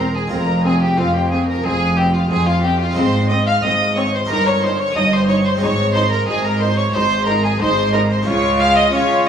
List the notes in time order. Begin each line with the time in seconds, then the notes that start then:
Already playing: E1 E2 C4 G4 A#4
0.00 A#4 A#5
0.14 G#4 G#5
0.27 F1 C4 F4 G#4 A#4
0.32 F2 C4 A#4 A#5
0.65 C4 G#4 G#5
0.81 G4 G5
0.97 F1 F2 C4 F4 F5
1.14 G4 G5
1.30 C4 G#4 G#5
1.47 A#4 A#5
1.64 F1 F2 C4 G#4 G#5
1.97 C4 G4 G5
2.13 F4 F5
2.29 F1 F2 C4 G#4 G#5
2.47 F4 F5
2.63 C4 G4 G5
2.80 F4 F5
2.91 G#3 C4 D#4
2.96 G#1 G#2 C4 G#4 C5 C6
3.29 C4 D#5 D#6
3.46 F5 F6
3.63 G#1 G#2 C4 D#5 D#6
3.95 C4 C#5 C#6
4.13 C5 C6
4.25 C#4 D#4 A#4 A#5
4.29 G1 G2 D#4 A#4
4.46 C#5 C#6
4.62 D#4 C5 C6
4.78 C#5 C#6
4.94 G1 G2 D#4 D#5 D#6
5.13 C5 C6
5.28 D#4 C#5 C#6
5.45 C5 C6
5.56 G#3 C4 D#4
5.60 G#1 G#2 D#4 G#4 C#5 C#6
5.93 D#4 C5 C6
6.10 A#4 A#5
6.26 G#1 G#2 D#4 G#4 G#5
6.44 A#4 A#5
6.59 D#4 C5 C6
6.77 C#5 C#6
6.93 G#1 G#2 D#4 C5 C6
7.26 D#4 A#4 A#5
7.43 G#4 G#5
7.60 G#1 G#2 D#4 C5 C6
7.93 D#4 A#4 A#5
8.10 C5 C6
8.22 G#3 C#4 F4
8.26 C#2 C#3 F4 C#5 C#6
8.60 F5 F6
8.76 D#5 D#6
8.92 C#3 C#4 F4 C#5 C#6